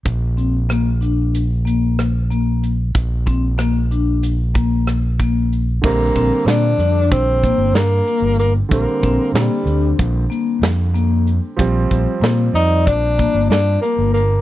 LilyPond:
<<
  \new Staff \with { instrumentName = "Tenor saxophone" } { \time 9/8 \key bes \major \tempo 4. = 62 r1 r8 | r1 r8 | bes4 d'4 c'4 bes4 bes8 | bes4 g4 r2 r8 |
r4. ees'8 d'4 d'8 bes8 bes8 | }
  \new Staff \with { instrumentName = "Vibraphone" } { \time 9/8 \key bes \major r8 c'8 bes8 d'4 bes4 bes4 | r8 c'8 bes8 d'4 bes4 bes4 | r8 c'8 bes8 d'4 bes4 bes4 | r8 c'8 bes8 d'4 bes4 bes4 |
r8 c'8 bes8 d''4 bes4 bes4 | }
  \new Staff \with { instrumentName = "Grand piano" } { \clef bass \time 9/8 \key bes \major r1 r8 | r1 r8 | <d g c'>1~ <d g c'>8 | <d g c'>1~ <d g c'>8 |
<f g c'>1~ <f g c'>8 | }
  \new Staff \with { instrumentName = "Fingered electric bass" } { \clef bass \time 9/8 \key bes \major bes,,1~ bes,,8 | bes,,1~ bes,,8 | bes,,8 bes,,16 r16 bes,8 f,8 bes,,8. g,,16 g,8 r16 g,,8. | bes,,16 r16 bes,,16 r16 bes,16 r16 d,8 bes,,8 r8 f,4. |
bes,,8 bes,,16 r16 bes,8 f,8 bes,,8. g,,16 g,8 r16 g,,8. | }
  \new DrumStaff \with { instrumentName = "Drums" } \drummode { \time 9/8 <hh bd>8 hh8 <hh ss>8 hh8 hh8 hh8 <hh ss>8 hh8 hh8 | <hh bd>8 <hh bd>8 <hh ss>8 hh8 hh8 <hh bd>8 <hh ss>8 <hh bd>8 hh8 | <cymc bd>8 <hh bd>8 <hh sn>8 hh8 <hh bd>8 <hh bd>8 <hh sn>8 hh8 hh8 | <hh bd>8 <hh bd>8 <hh sn>8 hh8 <hh bd>8 hh8 <hh sn>8 hh8 hh8 |
<hh bd>8 <hh bd>8 <hh sn>8 hh8 <hh bd>8 <hh bd>8 <hh sn>8 hh8 hh8 | }
>>